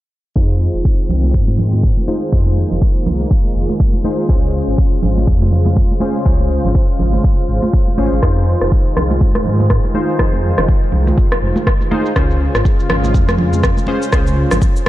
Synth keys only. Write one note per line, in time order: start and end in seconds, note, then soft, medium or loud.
0.35 2.05 D#4 medium
0.35 2.05 F4 medium
0.35 2.05 G#4 medium
0.35 2.05 C5 medium
2.08 2.30 D#4 medium
2.08 2.30 F4 medium
2.08 2.30 G#4 medium
2.08 2.30 C5 medium
2.32 4.02 D#4 medium
2.32 4.02 F4 medium
2.32 4.02 G#4 medium
2.32 4.02 C5 medium
4.04 4.27 D#4 medium
4.04 4.27 F4 medium
4.04 4.27 G#4 medium
4.04 4.27 C5 medium
4.29 5.99 C#4 medium
4.29 5.99 F4 medium
4.29 5.99 G#4 medium
4.29 5.99 C5 medium
6.01 6.23 C#4 medium
6.01 6.23 F4 medium
6.01 6.23 G#4 medium
6.01 6.23 C5 medium
6.25 7.95 C#4 medium
6.25 7.95 F4 medium
6.25 7.95 G#4 medium
6.25 7.95 C5 medium
7.98 8.20 C#4 medium
7.98 8.20 F4 medium
7.98 8.20 G#4 medium
7.98 8.20 C5 medium
8.22 9.92 D#4 medium
8.22 9.92 F4 medium
8.22 9.92 G#4 medium
8.22 9.92 C5 medium
9.94 10.17 D#4 medium
9.94 10.17 F4 medium
9.94 10.17 G#4 medium
9.94 10.17 C5 medium
10.19 11.89 D#4 medium
10.19 11.89 F4 medium
10.19 11.89 G#4 medium
10.19 11.89 C5 medium
11.91 12.13 D#4 medium
11.91 12.13 F4 medium
11.91 12.13 G#4 medium
11.91 12.13 C5 medium
12.16 13.86 C#4 medium
12.16 13.86 F4 medium
12.16 13.86 G#4 medium
12.16 13.86 C5 medium
13.88 14.10 C#4 medium
13.88 14.10 F4 medium
13.88 14.10 G#4 medium
13.88 14.10 C5 medium
14.12 14.89 C#4 medium
14.12 14.89 F4 medium
14.12 14.89 G#4 medium
14.12 14.89 C5 medium